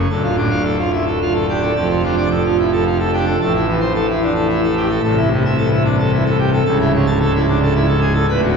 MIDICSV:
0, 0, Header, 1, 2, 480
1, 0, Start_track
1, 0, Key_signature, -1, "minor"
1, 0, Tempo, 545455
1, 85, Time_signature, 3, 2, 24, 8
1, 7540, End_track
2, 0, Start_track
2, 0, Title_t, "Pipe organ"
2, 0, Program_c, 0, 19
2, 87, Note_on_c, 0, 69, 59
2, 88, Note_on_c, 0, 26, 74
2, 89, Note_on_c, 0, 38, 65
2, 195, Note_off_c, 0, 69, 0
2, 205, Note_on_c, 0, 65, 62
2, 314, Note_off_c, 0, 65, 0
2, 323, Note_on_c, 0, 45, 56
2, 323, Note_on_c, 0, 62, 52
2, 434, Note_off_c, 0, 45, 0
2, 443, Note_on_c, 0, 77, 78
2, 542, Note_off_c, 0, 62, 0
2, 555, Note_off_c, 0, 77, 0
2, 569, Note_on_c, 0, 69, 57
2, 678, Note_off_c, 0, 69, 0
2, 693, Note_on_c, 0, 65, 57
2, 801, Note_off_c, 0, 65, 0
2, 812, Note_on_c, 0, 64, 55
2, 916, Note_off_c, 0, 64, 0
2, 935, Note_on_c, 0, 69, 61
2, 1043, Note_off_c, 0, 69, 0
2, 1066, Note_on_c, 0, 65, 66
2, 1170, Note_off_c, 0, 65, 0
2, 1176, Note_on_c, 0, 69, 65
2, 1285, Note_off_c, 0, 69, 0
2, 1304, Note_on_c, 0, 62, 57
2, 1307, Note_on_c, 0, 67, 52
2, 1406, Note_off_c, 0, 67, 0
2, 1427, Note_on_c, 0, 69, 59
2, 1506, Note_off_c, 0, 26, 0
2, 1507, Note_off_c, 0, 38, 0
2, 1507, Note_off_c, 0, 62, 0
2, 1526, Note_off_c, 0, 69, 0
2, 1542, Note_on_c, 0, 41, 75
2, 1547, Note_on_c, 0, 69, 60
2, 1550, Note_on_c, 0, 29, 72
2, 1651, Note_off_c, 0, 69, 0
2, 1667, Note_on_c, 0, 65, 57
2, 1772, Note_off_c, 0, 65, 0
2, 1787, Note_on_c, 0, 53, 62
2, 1790, Note_on_c, 0, 62, 56
2, 1893, Note_off_c, 0, 53, 0
2, 1912, Note_on_c, 0, 74, 83
2, 2002, Note_off_c, 0, 62, 0
2, 2015, Note_off_c, 0, 74, 0
2, 2031, Note_on_c, 0, 69, 56
2, 2135, Note_off_c, 0, 69, 0
2, 2152, Note_on_c, 0, 65, 61
2, 2256, Note_off_c, 0, 65, 0
2, 2279, Note_on_c, 0, 64, 53
2, 2375, Note_off_c, 0, 64, 0
2, 2398, Note_on_c, 0, 69, 63
2, 2499, Note_off_c, 0, 69, 0
2, 2513, Note_on_c, 0, 65, 65
2, 2617, Note_off_c, 0, 65, 0
2, 2632, Note_on_c, 0, 69, 69
2, 2736, Note_off_c, 0, 69, 0
2, 2751, Note_on_c, 0, 62, 61
2, 2757, Note_on_c, 0, 67, 56
2, 2854, Note_off_c, 0, 67, 0
2, 2876, Note_on_c, 0, 69, 59
2, 2951, Note_off_c, 0, 41, 0
2, 2953, Note_off_c, 0, 62, 0
2, 2955, Note_off_c, 0, 29, 0
2, 2973, Note_off_c, 0, 69, 0
2, 2996, Note_on_c, 0, 45, 72
2, 2997, Note_on_c, 0, 33, 68
2, 2997, Note_on_c, 0, 69, 68
2, 3099, Note_off_c, 0, 69, 0
2, 3118, Note_on_c, 0, 64, 69
2, 3220, Note_off_c, 0, 64, 0
2, 3237, Note_on_c, 0, 52, 57
2, 3339, Note_off_c, 0, 52, 0
2, 3348, Note_on_c, 0, 72, 82
2, 3453, Note_off_c, 0, 72, 0
2, 3472, Note_on_c, 0, 69, 62
2, 3575, Note_off_c, 0, 69, 0
2, 3591, Note_on_c, 0, 64, 66
2, 3694, Note_off_c, 0, 64, 0
2, 3711, Note_on_c, 0, 62, 57
2, 3809, Note_off_c, 0, 62, 0
2, 3827, Note_on_c, 0, 69, 65
2, 3931, Note_off_c, 0, 69, 0
2, 3946, Note_on_c, 0, 64, 69
2, 4051, Note_off_c, 0, 64, 0
2, 4076, Note_on_c, 0, 69, 71
2, 4176, Note_off_c, 0, 69, 0
2, 4194, Note_on_c, 0, 67, 61
2, 4289, Note_off_c, 0, 67, 0
2, 4312, Note_on_c, 0, 69, 68
2, 4389, Note_off_c, 0, 33, 0
2, 4389, Note_off_c, 0, 45, 0
2, 4408, Note_off_c, 0, 69, 0
2, 4429, Note_on_c, 0, 24, 78
2, 4429, Note_on_c, 0, 36, 81
2, 4429, Note_on_c, 0, 69, 70
2, 4531, Note_off_c, 0, 69, 0
2, 4555, Note_on_c, 0, 64, 70
2, 4655, Note_off_c, 0, 64, 0
2, 4680, Note_on_c, 0, 48, 68
2, 4777, Note_off_c, 0, 48, 0
2, 4796, Note_on_c, 0, 76, 85
2, 4895, Note_off_c, 0, 76, 0
2, 4907, Note_on_c, 0, 69, 64
2, 5009, Note_off_c, 0, 69, 0
2, 5023, Note_on_c, 0, 64, 77
2, 5126, Note_off_c, 0, 64, 0
2, 5146, Note_on_c, 0, 62, 62
2, 5243, Note_off_c, 0, 62, 0
2, 5272, Note_on_c, 0, 69, 75
2, 5370, Note_off_c, 0, 69, 0
2, 5389, Note_on_c, 0, 64, 77
2, 5489, Note_off_c, 0, 64, 0
2, 5505, Note_on_c, 0, 69, 81
2, 5606, Note_off_c, 0, 69, 0
2, 5618, Note_on_c, 0, 67, 66
2, 5717, Note_off_c, 0, 67, 0
2, 5745, Note_on_c, 0, 69, 70
2, 5820, Note_off_c, 0, 24, 0
2, 5820, Note_off_c, 0, 36, 0
2, 5835, Note_off_c, 0, 69, 0
2, 5852, Note_on_c, 0, 69, 84
2, 5855, Note_on_c, 0, 25, 86
2, 5855, Note_on_c, 0, 37, 89
2, 5958, Note_off_c, 0, 69, 0
2, 5982, Note_on_c, 0, 64, 80
2, 6084, Note_off_c, 0, 64, 0
2, 6106, Note_on_c, 0, 49, 75
2, 6205, Note_off_c, 0, 49, 0
2, 6219, Note_on_c, 0, 81, 93
2, 6321, Note_off_c, 0, 81, 0
2, 6342, Note_on_c, 0, 69, 79
2, 6442, Note_off_c, 0, 69, 0
2, 6465, Note_on_c, 0, 64, 74
2, 6563, Note_off_c, 0, 64, 0
2, 6579, Note_on_c, 0, 62, 70
2, 6675, Note_off_c, 0, 62, 0
2, 6709, Note_on_c, 0, 69, 75
2, 6805, Note_off_c, 0, 69, 0
2, 6821, Note_on_c, 0, 64, 88
2, 6920, Note_off_c, 0, 64, 0
2, 6937, Note_on_c, 0, 69, 85
2, 7038, Note_off_c, 0, 69, 0
2, 7052, Note_on_c, 0, 68, 73
2, 7150, Note_off_c, 0, 68, 0
2, 7168, Note_on_c, 0, 69, 71
2, 7251, Note_off_c, 0, 25, 0
2, 7251, Note_off_c, 0, 37, 0
2, 7268, Note_off_c, 0, 69, 0
2, 7295, Note_on_c, 0, 26, 91
2, 7295, Note_on_c, 0, 71, 81
2, 7296, Note_on_c, 0, 38, 94
2, 7397, Note_off_c, 0, 71, 0
2, 7420, Note_on_c, 0, 66, 83
2, 7520, Note_off_c, 0, 66, 0
2, 7540, Note_off_c, 0, 26, 0
2, 7540, Note_off_c, 0, 38, 0
2, 7540, End_track
0, 0, End_of_file